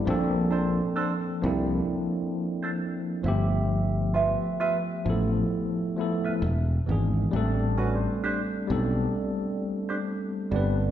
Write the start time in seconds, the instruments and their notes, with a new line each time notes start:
0.06 fretless electric bass A#1, tine electric piano F3 A#3 C4 D4
0.10 tine electric piano A4
0.51 hollow-body jazz guitar D4 A4 C5
0.96 hollow-body jazz guitar D4 A4 C5
1.41 fretless electric bass C2, tine electric piano F3 A#3 C4 D4
1.46 tine electric piano E4
2.63 hollow-body jazz guitar D4 A4 C5
3.23 fretless electric bass G1, tine electric piano F3 A3 B3 E5
3.28 tine electric piano G4
4.14 hollow-body jazz guitar F4 B4 E5
4.60 hollow-body jazz guitar F4 B4 E5
5.05 fretless electric bass A1, tine electric piano F3 A3 B3 E4
5.10 tine electric piano A4
5.96 tine electric piano F3 A3 B3 E4
6.01 tine electric piano A4
6.24 hollow-body jazz guitar F4 B4 E5
6.42 fretless electric bass E1
6.86 fretless electric bass G#1, tine electric piano E3 G#3 B3 D4
6.91 tine electric piano G#4
7.31 fretless electric bass A1, tine electric piano G3 A3 C4
7.36 tine electric piano D4 A4
7.77 hollow-body jazz guitar C#4 F#4 B4
7.95 hollow-body jazz guitar D4 G4 C5
8.24 hollow-body jazz guitar D4 G4 C5
8.67 fretless electric bass B1, tine electric piano G3 B3 C4 D4
8.72 tine electric piano A4
9.89 hollow-body jazz guitar D4 G4 C5
10.51 fretless electric bass G1, tine electric piano G3 B3 C4 D4
10.56 tine electric piano B4